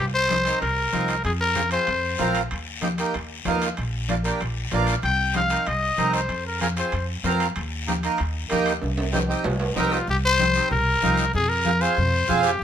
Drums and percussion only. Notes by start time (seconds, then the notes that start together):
0.29 high conga, high timbale, short guiro
0.45 high timbale, short guiro
0.62 high conga, high timbale, long guiro
0.93 high conga, high timbale, short guiro
1.08 high timbale, short guiro
1.24 high conga, high timbale, long guiro
1.55 high conga, high timbale, short guiro
1.71 high timbale, short guiro
1.87 high conga, high timbale, long guiro
2.18 high conga, high timbale, low timbale, short guiro
2.35 high timbale, short guiro
2.51 high conga, high timbale, long guiro
2.82 high conga, high timbale, short guiro
2.98 high timbale, short guiro
3.14 high conga, high timbale, long guiro
3.45 high conga, high timbale, low timbale, short guiro
3.62 high timbale, short guiro
3.77 high conga, high timbale, long guiro
4.09 high conga, high timbale, short guiro
4.24 high timbale, short guiro
4.40 high conga, high timbale, long guiro
4.71 high conga, high timbale, low timbale, short guiro
4.87 high timbale, short guiro
5.02 high conga, high timbale, long guiro
5.34 high conga, high timbale, short guiro
5.50 high timbale, short guiro
5.65 high conga, high timbale, long guiro
5.98 high conga, high timbale, short guiro
6.13 high timbale, short guiro
6.29 high conga, high timbale, long guiro
6.61 high conga, high timbale, short guiro
6.77 high timbale, short guiro
6.92 high conga, high timbale, long guiro
7.24 high conga, high timbale, low timbale, short guiro
7.40 high timbale, short guiro
7.56 high conga, high timbale, long guiro
7.88 high conga, high timbale, short guiro
8.03 high timbale, short guiro
8.18 high conga, high timbale, long guiro
8.50 high conga, high timbale, short guiro
8.66 high timbale, short guiro
8.82 high conga, high timbale, long guiro
8.98 high timbale
9.13 high conga, low timbale, short guiro
9.31 short guiro
9.44 high conga, low timbale, long guiro
9.60 low timbale
9.76 high conga, low timbale, short guiro
9.92 low timbale, short guiro
10.07 high conga, long guiro
10.39 high conga, short guiro
10.54 short guiro
10.71 high conga, low conga, long guiro
11.02 high conga, short guiro
11.17 short guiro
11.33 high conga, low conga, long guiro
11.65 high conga, short guiro
11.81 short guiro
11.96 high conga, low conga, long guiro
12.27 high conga, low conga, short guiro
12.43 short guiro
12.59 long guiro